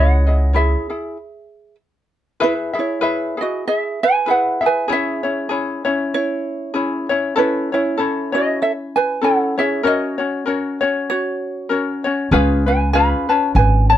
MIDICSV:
0, 0, Header, 1, 4, 480
1, 0, Start_track
1, 0, Key_signature, 4, "major"
1, 0, Tempo, 619195
1, 1861, Time_signature, 4, 2, 24, 8
1, 10835, End_track
2, 0, Start_track
2, 0, Title_t, "Ukulele"
2, 0, Program_c, 0, 24
2, 0, Note_on_c, 0, 73, 86
2, 0, Note_on_c, 0, 78, 89
2, 401, Note_off_c, 0, 73, 0
2, 432, Note_on_c, 0, 76, 90
2, 439, Note_on_c, 0, 68, 66
2, 446, Note_off_c, 0, 78, 0
2, 1355, Note_off_c, 0, 76, 0
2, 1359, Note_off_c, 0, 68, 0
2, 1886, Note_on_c, 0, 71, 92
2, 1891, Note_on_c, 0, 64, 70
2, 1956, Note_off_c, 0, 71, 0
2, 1961, Note_off_c, 0, 64, 0
2, 2162, Note_on_c, 0, 64, 64
2, 2167, Note_on_c, 0, 73, 72
2, 2596, Note_off_c, 0, 64, 0
2, 2642, Note_off_c, 0, 73, 0
2, 2643, Note_on_c, 0, 75, 73
2, 2653, Note_on_c, 0, 66, 67
2, 2827, Note_off_c, 0, 66, 0
2, 2841, Note_off_c, 0, 75, 0
2, 2849, Note_on_c, 0, 76, 93
2, 2856, Note_on_c, 0, 68, 79
2, 3092, Note_off_c, 0, 68, 0
2, 3115, Note_off_c, 0, 76, 0
2, 3126, Note_on_c, 0, 80, 103
2, 3130, Note_on_c, 0, 71, 80
2, 3305, Note_off_c, 0, 71, 0
2, 3322, Note_off_c, 0, 80, 0
2, 3335, Note_on_c, 0, 78, 83
2, 3337, Note_on_c, 0, 71, 61
2, 3571, Note_off_c, 0, 71, 0
2, 3598, Note_off_c, 0, 78, 0
2, 3613, Note_on_c, 0, 71, 79
2, 3614, Note_on_c, 0, 80, 80
2, 3787, Note_off_c, 0, 71, 0
2, 3804, Note_off_c, 0, 80, 0
2, 3817, Note_on_c, 0, 76, 91
2, 3823, Note_on_c, 0, 68, 63
2, 4520, Note_off_c, 0, 68, 0
2, 4520, Note_off_c, 0, 76, 0
2, 4762, Note_on_c, 0, 73, 110
2, 4767, Note_on_c, 0, 64, 68
2, 5472, Note_off_c, 0, 73, 0
2, 5475, Note_off_c, 0, 64, 0
2, 5723, Note_on_c, 0, 71, 81
2, 5729, Note_on_c, 0, 64, 64
2, 5968, Note_off_c, 0, 64, 0
2, 5992, Note_off_c, 0, 71, 0
2, 5999, Note_on_c, 0, 73, 77
2, 6003, Note_on_c, 0, 64, 62
2, 6437, Note_off_c, 0, 64, 0
2, 6468, Note_off_c, 0, 73, 0
2, 6471, Note_on_c, 0, 75, 79
2, 6478, Note_on_c, 0, 66, 56
2, 6659, Note_off_c, 0, 66, 0
2, 6675, Note_off_c, 0, 75, 0
2, 6680, Note_on_c, 0, 69, 67
2, 6685, Note_on_c, 0, 76, 83
2, 6752, Note_off_c, 0, 69, 0
2, 6754, Note_off_c, 0, 76, 0
2, 6944, Note_on_c, 0, 80, 100
2, 6952, Note_on_c, 0, 71, 78
2, 7136, Note_off_c, 0, 71, 0
2, 7152, Note_off_c, 0, 80, 0
2, 7164, Note_on_c, 0, 78, 82
2, 7167, Note_on_c, 0, 69, 60
2, 7407, Note_off_c, 0, 69, 0
2, 7407, Note_off_c, 0, 78, 0
2, 7431, Note_on_c, 0, 76, 93
2, 7436, Note_on_c, 0, 68, 75
2, 7619, Note_off_c, 0, 68, 0
2, 7636, Note_off_c, 0, 76, 0
2, 7649, Note_on_c, 0, 75, 89
2, 7652, Note_on_c, 0, 66, 62
2, 8357, Note_off_c, 0, 66, 0
2, 8358, Note_off_c, 0, 75, 0
2, 8602, Note_on_c, 0, 73, 98
2, 8614, Note_on_c, 0, 66, 74
2, 9314, Note_off_c, 0, 73, 0
2, 9320, Note_off_c, 0, 66, 0
2, 9562, Note_on_c, 0, 77, 94
2, 9574, Note_on_c, 0, 68, 77
2, 9813, Note_off_c, 0, 68, 0
2, 9828, Note_on_c, 0, 80, 80
2, 9833, Note_off_c, 0, 77, 0
2, 9840, Note_on_c, 0, 71, 69
2, 10022, Note_off_c, 0, 71, 0
2, 10023, Note_off_c, 0, 80, 0
2, 10026, Note_on_c, 0, 83, 106
2, 10037, Note_on_c, 0, 77, 86
2, 10284, Note_off_c, 0, 77, 0
2, 10305, Note_off_c, 0, 83, 0
2, 10305, Note_on_c, 0, 81, 87
2, 10317, Note_on_c, 0, 73, 63
2, 10500, Note_off_c, 0, 73, 0
2, 10508, Note_off_c, 0, 81, 0
2, 10511, Note_on_c, 0, 80, 96
2, 10527, Note_on_c, 0, 71, 71
2, 10769, Note_off_c, 0, 71, 0
2, 10770, Note_off_c, 0, 80, 0
2, 10773, Note_on_c, 0, 81, 99
2, 10788, Note_on_c, 0, 73, 77
2, 10835, Note_off_c, 0, 73, 0
2, 10835, Note_off_c, 0, 81, 0
2, 10835, End_track
3, 0, Start_track
3, 0, Title_t, "Ukulele"
3, 0, Program_c, 1, 24
3, 0, Note_on_c, 1, 64, 67
3, 0, Note_on_c, 1, 68, 81
3, 0, Note_on_c, 1, 73, 78
3, 0, Note_on_c, 1, 75, 79
3, 197, Note_off_c, 1, 75, 0
3, 203, Note_off_c, 1, 73, 0
3, 205, Note_off_c, 1, 68, 0
3, 206, Note_on_c, 1, 75, 54
3, 211, Note_off_c, 1, 64, 0
3, 214, Note_on_c, 1, 68, 45
3, 223, Note_on_c, 1, 64, 37
3, 412, Note_off_c, 1, 64, 0
3, 414, Note_on_c, 1, 73, 56
3, 418, Note_off_c, 1, 68, 0
3, 418, Note_off_c, 1, 75, 0
3, 421, Note_on_c, 1, 64, 62
3, 428, Note_on_c, 1, 68, 58
3, 686, Note_off_c, 1, 68, 0
3, 691, Note_off_c, 1, 64, 0
3, 691, Note_off_c, 1, 73, 0
3, 695, Note_on_c, 1, 68, 42
3, 700, Note_on_c, 1, 64, 42
3, 902, Note_off_c, 1, 68, 0
3, 905, Note_off_c, 1, 64, 0
3, 1862, Note_on_c, 1, 71, 81
3, 1863, Note_on_c, 1, 64, 81
3, 1868, Note_on_c, 1, 68, 87
3, 1872, Note_on_c, 1, 76, 77
3, 2111, Note_off_c, 1, 76, 0
3, 2119, Note_off_c, 1, 68, 0
3, 2120, Note_on_c, 1, 76, 49
3, 2124, Note_off_c, 1, 64, 0
3, 2129, Note_on_c, 1, 68, 50
3, 2133, Note_on_c, 1, 64, 41
3, 2134, Note_off_c, 1, 71, 0
3, 2328, Note_off_c, 1, 64, 0
3, 2332, Note_off_c, 1, 68, 0
3, 2334, Note_off_c, 1, 76, 0
3, 2334, Note_on_c, 1, 71, 70
3, 2338, Note_on_c, 1, 64, 53
3, 2341, Note_on_c, 1, 68, 74
3, 2345, Note_on_c, 1, 76, 71
3, 2605, Note_off_c, 1, 68, 0
3, 2609, Note_off_c, 1, 71, 0
3, 2611, Note_off_c, 1, 64, 0
3, 2614, Note_on_c, 1, 68, 50
3, 2615, Note_off_c, 1, 76, 0
3, 2620, Note_on_c, 1, 64, 51
3, 3302, Note_on_c, 1, 71, 63
3, 3308, Note_off_c, 1, 64, 0
3, 3311, Note_on_c, 1, 64, 61
3, 3313, Note_off_c, 1, 68, 0
3, 3316, Note_on_c, 1, 68, 62
3, 3320, Note_on_c, 1, 76, 63
3, 3563, Note_off_c, 1, 76, 0
3, 3572, Note_off_c, 1, 68, 0
3, 3573, Note_off_c, 1, 71, 0
3, 3573, Note_on_c, 1, 76, 55
3, 3578, Note_off_c, 1, 64, 0
3, 3581, Note_on_c, 1, 68, 52
3, 3587, Note_on_c, 1, 64, 44
3, 3773, Note_off_c, 1, 68, 0
3, 3780, Note_off_c, 1, 76, 0
3, 3782, Note_off_c, 1, 64, 0
3, 3783, Note_on_c, 1, 68, 75
3, 3787, Note_on_c, 1, 61, 71
3, 3792, Note_on_c, 1, 64, 73
3, 3795, Note_on_c, 1, 73, 88
3, 4047, Note_off_c, 1, 73, 0
3, 4053, Note_off_c, 1, 68, 0
3, 4055, Note_off_c, 1, 61, 0
3, 4056, Note_on_c, 1, 73, 57
3, 4058, Note_off_c, 1, 64, 0
3, 4066, Note_on_c, 1, 64, 53
3, 4069, Note_on_c, 1, 61, 41
3, 4255, Note_off_c, 1, 61, 0
3, 4257, Note_on_c, 1, 68, 64
3, 4260, Note_off_c, 1, 64, 0
3, 4261, Note_off_c, 1, 73, 0
3, 4265, Note_on_c, 1, 61, 64
3, 4269, Note_on_c, 1, 64, 68
3, 4272, Note_on_c, 1, 73, 64
3, 4524, Note_off_c, 1, 73, 0
3, 4530, Note_off_c, 1, 64, 0
3, 4530, Note_off_c, 1, 68, 0
3, 4533, Note_on_c, 1, 73, 62
3, 4534, Note_off_c, 1, 61, 0
3, 4540, Note_on_c, 1, 64, 63
3, 4550, Note_on_c, 1, 61, 52
3, 5220, Note_off_c, 1, 61, 0
3, 5223, Note_on_c, 1, 68, 56
3, 5224, Note_on_c, 1, 61, 54
3, 5229, Note_off_c, 1, 64, 0
3, 5232, Note_on_c, 1, 64, 67
3, 5235, Note_off_c, 1, 73, 0
3, 5238, Note_on_c, 1, 73, 63
3, 5489, Note_off_c, 1, 73, 0
3, 5493, Note_off_c, 1, 68, 0
3, 5494, Note_off_c, 1, 61, 0
3, 5498, Note_off_c, 1, 64, 0
3, 5499, Note_on_c, 1, 73, 65
3, 5511, Note_on_c, 1, 64, 55
3, 5517, Note_on_c, 1, 61, 53
3, 5698, Note_off_c, 1, 61, 0
3, 5701, Note_off_c, 1, 64, 0
3, 5703, Note_off_c, 1, 73, 0
3, 5703, Note_on_c, 1, 69, 82
3, 5707, Note_on_c, 1, 61, 75
3, 5710, Note_on_c, 1, 64, 72
3, 5712, Note_on_c, 1, 73, 75
3, 5974, Note_off_c, 1, 69, 0
3, 5976, Note_off_c, 1, 61, 0
3, 5977, Note_off_c, 1, 64, 0
3, 5978, Note_off_c, 1, 73, 0
3, 5986, Note_on_c, 1, 73, 46
3, 5998, Note_on_c, 1, 64, 54
3, 6000, Note_on_c, 1, 61, 46
3, 6181, Note_off_c, 1, 61, 0
3, 6182, Note_on_c, 1, 69, 60
3, 6185, Note_off_c, 1, 64, 0
3, 6186, Note_off_c, 1, 73, 0
3, 6190, Note_on_c, 1, 61, 63
3, 6194, Note_on_c, 1, 64, 67
3, 6201, Note_on_c, 1, 73, 63
3, 6443, Note_off_c, 1, 73, 0
3, 6452, Note_on_c, 1, 73, 56
3, 6453, Note_off_c, 1, 64, 0
3, 6453, Note_off_c, 1, 69, 0
3, 6458, Note_off_c, 1, 61, 0
3, 6463, Note_on_c, 1, 64, 55
3, 6467, Note_on_c, 1, 61, 48
3, 7143, Note_off_c, 1, 64, 0
3, 7143, Note_on_c, 1, 69, 58
3, 7146, Note_off_c, 1, 61, 0
3, 7149, Note_on_c, 1, 61, 61
3, 7152, Note_on_c, 1, 64, 64
3, 7155, Note_off_c, 1, 73, 0
3, 7158, Note_on_c, 1, 73, 61
3, 7414, Note_off_c, 1, 69, 0
3, 7414, Note_off_c, 1, 73, 0
3, 7417, Note_off_c, 1, 61, 0
3, 7419, Note_off_c, 1, 64, 0
3, 7423, Note_on_c, 1, 73, 50
3, 7431, Note_on_c, 1, 64, 57
3, 7439, Note_on_c, 1, 61, 51
3, 7619, Note_off_c, 1, 61, 0
3, 7623, Note_on_c, 1, 70, 73
3, 7626, Note_off_c, 1, 73, 0
3, 7629, Note_off_c, 1, 64, 0
3, 7629, Note_on_c, 1, 61, 78
3, 7632, Note_on_c, 1, 66, 77
3, 7634, Note_on_c, 1, 73, 83
3, 7882, Note_off_c, 1, 73, 0
3, 7891, Note_on_c, 1, 73, 50
3, 7892, Note_off_c, 1, 66, 0
3, 7895, Note_off_c, 1, 70, 0
3, 7898, Note_off_c, 1, 61, 0
3, 7901, Note_on_c, 1, 66, 53
3, 7908, Note_on_c, 1, 61, 44
3, 8100, Note_off_c, 1, 73, 0
3, 8104, Note_off_c, 1, 61, 0
3, 8105, Note_off_c, 1, 66, 0
3, 8105, Note_on_c, 1, 70, 63
3, 8113, Note_on_c, 1, 61, 67
3, 8115, Note_on_c, 1, 66, 68
3, 8122, Note_on_c, 1, 73, 67
3, 8369, Note_off_c, 1, 73, 0
3, 8376, Note_off_c, 1, 70, 0
3, 8378, Note_on_c, 1, 73, 73
3, 8379, Note_off_c, 1, 66, 0
3, 8380, Note_off_c, 1, 61, 0
3, 8388, Note_on_c, 1, 66, 58
3, 8394, Note_on_c, 1, 61, 50
3, 9064, Note_on_c, 1, 70, 57
3, 9067, Note_off_c, 1, 61, 0
3, 9069, Note_off_c, 1, 66, 0
3, 9070, Note_on_c, 1, 61, 61
3, 9078, Note_on_c, 1, 66, 67
3, 9079, Note_off_c, 1, 73, 0
3, 9082, Note_on_c, 1, 73, 62
3, 9326, Note_off_c, 1, 73, 0
3, 9335, Note_off_c, 1, 66, 0
3, 9335, Note_on_c, 1, 73, 69
3, 9336, Note_off_c, 1, 70, 0
3, 9339, Note_off_c, 1, 61, 0
3, 9344, Note_on_c, 1, 66, 58
3, 9352, Note_on_c, 1, 61, 51
3, 9540, Note_off_c, 1, 61, 0
3, 9543, Note_off_c, 1, 73, 0
3, 9547, Note_off_c, 1, 66, 0
3, 9550, Note_on_c, 1, 61, 89
3, 9550, Note_on_c, 1, 68, 81
3, 9553, Note_on_c, 1, 65, 78
3, 9558, Note_on_c, 1, 71, 72
3, 9807, Note_off_c, 1, 71, 0
3, 9815, Note_off_c, 1, 65, 0
3, 9816, Note_on_c, 1, 71, 48
3, 9819, Note_off_c, 1, 61, 0
3, 9819, Note_off_c, 1, 68, 0
3, 9824, Note_on_c, 1, 65, 44
3, 9830, Note_on_c, 1, 61, 44
3, 10023, Note_off_c, 1, 71, 0
3, 10026, Note_off_c, 1, 61, 0
3, 10027, Note_off_c, 1, 65, 0
3, 10027, Note_on_c, 1, 68, 64
3, 10036, Note_on_c, 1, 61, 70
3, 10039, Note_on_c, 1, 65, 68
3, 10040, Note_on_c, 1, 71, 73
3, 10291, Note_off_c, 1, 71, 0
3, 10298, Note_off_c, 1, 65, 0
3, 10298, Note_off_c, 1, 68, 0
3, 10301, Note_on_c, 1, 71, 60
3, 10302, Note_off_c, 1, 61, 0
3, 10307, Note_on_c, 1, 65, 49
3, 10315, Note_on_c, 1, 61, 52
3, 10835, Note_off_c, 1, 61, 0
3, 10835, Note_off_c, 1, 65, 0
3, 10835, Note_off_c, 1, 71, 0
3, 10835, End_track
4, 0, Start_track
4, 0, Title_t, "Upright bass"
4, 0, Program_c, 2, 32
4, 0, Note_on_c, 2, 37, 74
4, 570, Note_off_c, 2, 37, 0
4, 9545, Note_on_c, 2, 37, 84
4, 10169, Note_off_c, 2, 37, 0
4, 10503, Note_on_c, 2, 32, 81
4, 10835, Note_off_c, 2, 32, 0
4, 10835, End_track
0, 0, End_of_file